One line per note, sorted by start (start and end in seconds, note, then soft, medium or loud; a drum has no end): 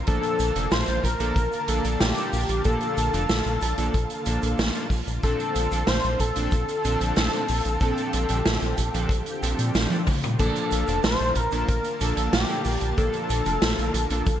0.00 10.35 F4 medium
0.07 0.20 A#1 loud
0.07 0.52 A#2 medium
0.07 5.19 D3 medium
0.07 0.52 F3 medium
0.07 5.19 A#3 medium
0.07 0.52 A#3 medium
0.07 0.52 D4 medium
0.07 0.52 A4 medium
0.07 0.73 A4 loud
0.07 7.77 A5 medium
0.07 kick loud
0.07 closed hi-hat medium
0.07 shaker medium
0.23 closed hi-hat soft
0.23 shaker soft
0.39 0.52 A#1 loud
0.39 closed hi-hat medium
0.39 shaker medium
0.55 0.68 F1 medium
0.55 0.65 A#2 medium
0.55 0.65 F3 medium
0.55 0.65 A#3 medium
0.55 0.65 D4 medium
0.55 0.65 A4 medium
0.55 closed hi-hat medium
0.55 shaker soft
0.71 0.84 A#1 loud
0.71 1.05 C5 loud
0.71 snare loud
0.71 closed hi-hat medium
0.71 shaker medium
0.87 1.00 A#1 medium
0.87 closed hi-hat soft
0.87 shaker soft
1.04 1.16 A#1 medium
1.04 1.70 A#4 loud
1.04 kick medium
1.04 closed hi-hat medium
1.04 shaker medium
1.20 1.32 A#1 medium
1.20 1.35 A#2 medium
1.20 1.35 F3 medium
1.20 1.35 A#3 medium
1.20 1.35 D4 medium
1.20 1.35 A4 loud
1.20 closed hi-hat medium
1.20 shaker soft
1.36 1.48 A#1 loud
1.36 kick loud
1.36 closed hi-hat medium
1.36 shaker medium
1.52 closed hi-hat soft
1.52 shaker soft
1.68 1.81 A#1 loud
1.68 2.13 A#2 medium
1.68 2.13 F3 medium
1.68 2.13 A#3 medium
1.68 2.13 D4 medium
1.68 2.13 A4 medium
1.68 2.00 A4 loud
1.68 closed hi-hat medium
1.68 shaker medium
1.84 1.97 A#1 medium
1.84 closed hi-hat medium
1.84 shaker soft
2.00 2.13 A#1 loud
2.00 2.61 G4 loud
2.00 snare loud
2.00 closed hi-hat medium
2.00 shaker medium
2.16 2.26 A#2 medium
2.16 2.26 F3 medium
2.16 2.26 A#3 medium
2.16 2.26 D4 medium
2.16 2.26 A4 medium
2.16 closed hi-hat soft
2.16 shaker soft
2.33 2.45 A#1 medium
2.33 open hi-hat medium
2.33 shaker medium
2.48 2.61 A#1 medium
2.48 closed hi-hat medium
2.48 shaker soft
2.64 2.78 A#1 loud
2.64 3.10 A#2 medium
2.64 3.10 F3 medium
2.64 3.10 A#3 medium
2.64 3.10 D4 medium
2.64 4.55 A4 loud
2.64 3.10 A4 medium
2.64 kick loud
2.64 closed hi-hat medium
2.64 shaker medium
2.81 closed hi-hat soft
2.81 shaker soft
2.97 3.10 A#1 loud
2.97 closed hi-hat loud
2.97 shaker medium
3.13 3.26 F1 medium
3.13 3.23 A#2 medium
3.13 3.23 F3 medium
3.13 3.23 A#3 medium
3.13 3.23 D4 medium
3.13 3.23 A4 medium
3.13 closed hi-hat medium
3.13 shaker medium
3.29 3.42 A#1 loud
3.29 snare loud
3.29 closed hi-hat medium
3.29 shaker medium
3.46 3.58 A#1 medium
3.46 closed hi-hat soft
3.46 shaker soft
3.62 3.74 A#1 loud
3.62 closed hi-hat loud
3.62 shaker medium
3.78 3.90 A#1 medium
3.78 3.93 A#2 medium
3.78 3.93 F3 medium
3.78 3.93 A#3 medium
3.78 3.93 D4 medium
3.78 3.93 A4 loud
3.78 closed hi-hat medium
3.78 shaker soft
3.94 4.07 A#1 loud
3.94 kick loud
3.94 closed hi-hat medium
3.94 shaker medium
4.10 closed hi-hat soft
4.10 shaker soft
4.26 4.39 A#1 medium
4.26 4.71 A#2 medium
4.26 4.71 F3 medium
4.26 4.71 A#3 medium
4.26 4.71 D4 medium
4.26 4.71 A4 medium
4.26 closed hi-hat medium
4.26 shaker medium
4.42 4.55 A#1 medium
4.42 closed hi-hat medium
4.42 shaker medium
4.59 4.71 A#1 loud
4.59 snare loud
4.59 closed hi-hat medium
4.59 shaker medium
4.75 4.84 A#2 medium
4.75 4.84 F3 medium
4.75 4.84 A#3 medium
4.75 4.84 D4 medium
4.75 4.84 A4 medium
4.75 closed hi-hat soft
4.75 shaker soft
4.90 5.03 A#1 medium
4.90 kick medium
4.90 open hi-hat medium
4.90 shaker medium
5.07 5.19 A#1 medium
5.07 closed hi-hat medium
5.07 shaker medium
5.23 5.36 A#1 loud
5.23 5.68 A#2 medium
5.23 14.40 D3 medium
5.23 5.68 F3 medium
5.23 5.68 C4 medium
5.23 10.35 C4 medium
5.23 5.68 D4 medium
5.23 5.68 A4 loud
5.23 5.89 A4 loud
5.23 kick loud
5.23 closed hi-hat medium
5.23 shaker medium
5.39 closed hi-hat soft
5.39 shaker soft
5.55 5.68 A#1 loud
5.55 closed hi-hat loud
5.55 shaker medium
5.71 5.84 A#1 medium
5.71 5.81 A#2 medium
5.71 5.81 F3 medium
5.71 5.81 C4 medium
5.71 5.81 D4 medium
5.71 5.81 A4 medium
5.71 closed hi-hat medium
5.71 shaker soft
5.87 6.00 A#1 loud
5.87 6.20 C5 loud
5.87 snare loud
5.87 closed hi-hat medium
5.87 shaker medium
6.04 6.16 A#1 medium
6.04 closed hi-hat soft
6.04 shaker soft
6.20 6.32 A#1 medium
6.20 9.71 A4 loud
6.20 kick medium
6.20 closed hi-hat loud
6.20 shaker medium
6.36 6.49 A#1 medium
6.36 6.51 A#2 medium
6.36 6.51 F3 medium
6.36 6.51 C4 medium
6.36 6.51 D4 medium
6.36 6.51 A4 loud
6.36 closed hi-hat medium
6.36 shaker soft
6.52 6.65 A#1 loud
6.52 kick loud
6.52 closed hi-hat medium
6.52 shaker medium
6.68 closed hi-hat soft
6.68 shaker soft
6.85 6.97 A#1 loud
6.85 7.29 A#2 medium
6.85 7.29 F3 medium
6.85 7.29 C4 medium
6.85 7.29 D4 medium
6.85 7.29 A4 medium
6.85 closed hi-hat medium
6.85 shaker medium
7.01 7.13 A#1 medium
7.01 closed hi-hat medium
7.01 shaker soft
7.16 7.29 A#1 loud
7.16 snare loud
7.16 closed hi-hat medium
7.16 shaker medium
7.33 7.42 A#2 medium
7.33 7.42 F3 medium
7.33 7.42 C4 medium
7.33 7.42 D4 medium
7.33 7.42 A4 medium
7.33 closed hi-hat soft
7.33 shaker soft
7.48 7.61 A#1 loud
7.48 open hi-hat medium
7.48 shaker medium
7.65 7.77 A#1 medium
7.65 closed hi-hat medium
7.65 shaker medium
7.81 7.93 A#1 loud
7.81 8.26 A#2 medium
7.81 8.26 F3 medium
7.81 8.26 C4 medium
7.81 8.26 D4 medium
7.81 10.37 G4 medium
7.81 8.26 A4 loud
7.81 kick loud
7.81 closed hi-hat medium
7.81 shaker medium
7.97 closed hi-hat soft
7.97 shaker soft
8.13 8.26 A#1 loud
8.13 closed hi-hat loud
8.13 shaker medium
8.29 8.42 A#1 medium
8.29 8.39 A#2 medium
8.29 8.39 F3 medium
8.29 8.39 C4 medium
8.29 8.39 D4 medium
8.29 8.39 A4 medium
8.29 closed hi-hat medium
8.29 shaker medium
8.46 8.58 A#1 loud
8.46 snare loud
8.46 closed hi-hat medium
8.46 shaker medium
8.61 8.74 A#1 medium
8.61 closed hi-hat soft
8.61 shaker soft
8.78 8.90 A#1 medium
8.78 kick medium
8.78 closed hi-hat loud
8.78 shaker medium
8.94 9.06 A#1 medium
8.94 9.09 A#2 medium
8.94 9.09 F3 medium
8.94 9.09 C4 medium
8.94 9.09 D4 medium
8.94 9.09 A4 loud
8.94 closed hi-hat medium
8.94 shaker soft
9.09 9.22 A#1 loud
9.09 kick loud
9.09 closed hi-hat medium
9.09 shaker medium
9.26 closed hi-hat soft
9.26 shaker soft
9.43 9.55 A#1 loud
9.43 9.87 A#2 medium
9.43 9.87 F3 medium
9.43 9.87 C4 medium
9.43 9.87 D4 medium
9.43 9.87 A4 medium
9.43 closed hi-hat medium
9.43 shaker medium
9.59 9.71 A#2 medium
9.59 closed hi-hat medium
9.59 shaker soft
9.75 9.87 A#1 loud
9.75 snare loud
9.75 closed hi-hat medium
9.75 shaker medium
9.90 10.00 A#2 medium
9.90 10.00 F3 medium
9.90 10.00 C4 medium
9.90 10.00 D4 medium
9.90 10.00 A4 medium
9.90 closed hi-hat soft
9.90 high tom medium
9.90 shaker soft
10.07 10.20 A#1 loud
10.07 kick loud
10.07 open hi-hat medium
10.07 mid tom medium
10.07 shaker medium
10.23 10.36 A#2 medium
10.23 closed hi-hat medium
10.23 mid tom medium
10.23 shaker soft
10.39 10.52 A#1 loud
10.39 10.84 A#2 medium
10.39 10.84 F3 medium
10.39 10.84 A#3 medium
10.39 14.40 A#3 medium
10.39 10.84 D4 medium
10.39 14.40 F4 medium
10.39 11.00 A4 loud
10.39 10.84 A4 medium
10.39 14.40 A5 medium
10.39 kick loud
10.39 closed hi-hat medium
10.39 crash medium
10.39 shaker medium
10.56 closed hi-hat soft
10.56 shaker soft
10.71 10.84 A#1 loud
10.71 closed hi-hat loud
10.71 shaker medium
10.87 11.00 F1 medium
10.87 10.97 A#2 medium
10.87 10.97 F3 medium
10.87 10.97 A#3 medium
10.87 10.97 D4 medium
10.87 10.97 A4 medium
10.87 closed hi-hat medium
10.87 shaker medium
11.03 11.16 A#1 loud
11.03 11.38 C5 loud
11.03 snare loud
11.03 closed hi-hat medium
11.03 shaker medium
11.19 11.32 A#1 medium
11.19 closed hi-hat soft
11.19 shaker soft
11.35 11.48 A#1 loud
11.35 12.03 A#4 loud
11.35 kick medium
11.35 closed hi-hat medium
11.35 shaker medium
11.51 11.65 A#1 medium
11.51 11.67 A#2 loud
11.51 11.67 F3 medium
11.51 11.67 A#3 medium
11.51 11.67 D4 medium
11.51 11.67 A4 loud
11.51 closed hi-hat medium
11.51 shaker soft
11.68 11.81 A#1 loud
11.68 kick loud
11.68 closed hi-hat medium
11.68 shaker medium
11.84 closed hi-hat soft
11.84 shaker soft
12.01 12.13 A#1 loud
12.01 12.45 A#2 medium
12.01 12.45 F3 medium
12.01 12.45 A#3 medium
12.01 12.45 D4 medium
12.01 12.45 A4 medium
12.01 12.33 A4 loud
12.01 closed hi-hat loud
12.01 shaker medium
12.17 12.29 A#1 medium
12.17 closed hi-hat medium
12.17 shaker soft
12.33 12.45 A#1 loud
12.33 12.94 G4 loud
12.33 snare loud
12.33 closed hi-hat medium
12.33 shaker medium
12.49 12.59 A#2 medium
12.49 12.59 F3 medium
12.49 12.59 A#3 medium
12.49 12.59 D4 medium
12.49 12.59 A4 medium
12.49 closed hi-hat soft
12.49 shaker soft
12.65 12.77 A#1 medium
12.65 open hi-hat medium
12.65 shaker medium
12.81 12.94 A#1 medium
12.81 closed hi-hat medium
12.81 shaker soft
12.97 13.10 A#1 loud
12.97 13.42 A#2 medium
12.97 13.42 F3 medium
12.97 13.42 A#3 medium
12.97 13.42 D4 medium
12.97 13.42 A4 loud
12.97 14.40 A4 loud
12.97 kick loud
12.97 closed hi-hat medium
12.97 shaker medium
13.13 closed hi-hat soft
13.13 shaker soft
13.30 13.42 A#1 loud
13.30 closed hi-hat loud
13.30 shaker medium
13.46 13.58 F1 medium
13.46 13.55 A#2 medium
13.46 13.55 F3 medium
13.46 13.55 A#3 medium
13.46 13.55 D4 medium
13.46 13.55 A4 medium
13.46 closed hi-hat medium
13.46 shaker soft
13.62 13.74 A#1 loud
13.62 snare loud
13.62 closed hi-hat medium
13.62 shaker medium
13.78 13.90 A#1 medium
13.78 closed hi-hat soft
13.78 shaker soft
13.94 14.06 A#1 medium
13.94 closed hi-hat loud
13.94 shaker medium
14.10 14.23 A#1 medium
14.10 14.26 A#2 medium
14.10 14.26 F3 medium
14.10 14.26 A#3 medium
14.10 14.26 D4 medium
14.10 14.26 A4 loud
14.10 closed hi-hat medium
14.10 shaker soft
14.26 14.39 A#1 loud
14.26 kick loud
14.26 closed hi-hat medium
14.26 shaker medium